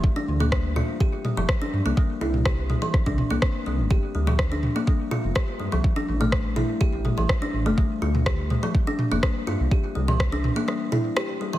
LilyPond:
<<
  \new Staff \with { instrumentName = "Kalimba" } { \time 4/4 \key g \dorian \tempo 4 = 124 r16 d'16 r16 bes16 g16 r16 f'16 r16 g'16 r16 g16 f16 r16 d'16 r16 bes16 | g16 r16 e'16 r16 g'16 r16 g16 e16 r16 d'16 r16 bes16 c'16 r16 g16 r16 | g'16 r16 g16 f16 r16 d'16 r16 bes16 g16 r16 f'16 r16 g'16 r16 g16 f16 | r16 d'16 r16 a16 g16 r16 e'16 r16 g'16 r16 g16 e16 r16 d'16 r16 a16 |
g16 r16 f'16 r16 g'16 r16 g16 f16 r16 d'16 r16 bes16 g16 r16 f'16 r16 | g'16 r16 g16 e16 r16 d'16 r16 bes16 g16 r16 e'16 r16 g'16 r16 g16 e16 | }
  \new Staff \with { instrumentName = "Detuned saw bass" } { \clef bass \time 4/4 \key g \dorian g,,16 r16 d,4 r4 r16 f,,16 r8 g,16 c,16 | r8 c,4 r8. c,16 r16 c,16 r8 c,16 g,,16 | g,,16 r16 d,4 r4 r16 f,,16 r8 g,16 c,16 | r8 a,,4 r8. a,,16 r16 a,,16 r8 a,,16 e,,16 |
g,,16 r16 d,4 r4 r16 f,,16 r8 g,16 c,16 | r8 c,4 r2 r8 | }
  \new DrumStaff \with { instrumentName = "Drums" } \drummode { \time 4/4 bd8. toml16 <bd ss>8 toml8 bd8 toml8 <bd ss>4 | bd8. toml16 <bd ss>8 toml8 <bd ss>16 bd16 toml8 <bd ss>4 | bd8. toml16 <bd ss>8 toml8 bd8 toml8 <bd ss>4 | bd8. toml16 <bd ss>8 toml8 bd8 toml8 <bd ss>4 |
bd8. toml16 <bd ss>8 toml8 bd8 toml8 <bd ss>4 | bd8. toml16 <bd ss>8 toml8 ss8 toml8 ss4 | }
>>